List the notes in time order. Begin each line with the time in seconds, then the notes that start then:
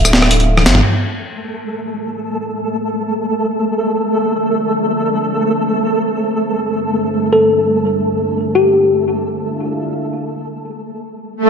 Already playing: D1 D4 A4 E5 F5
0.05 cross-stick, tambourine
0.13 snare
0.22 cross-stick
0.31 closed hi-hat
0.40 closed hi-hat
0.58 cross-stick, high tom
0.66 G1, snare, closed hi-hat, tambourine
0.75 mid tom
0.83 A3 E4 A4 C5, crash
3.64 D4 F4 C5 D5
6.45 G3 D4 A4
7.33 A4
8.55 G4
9.25 D4 E5 F5
11.36 swell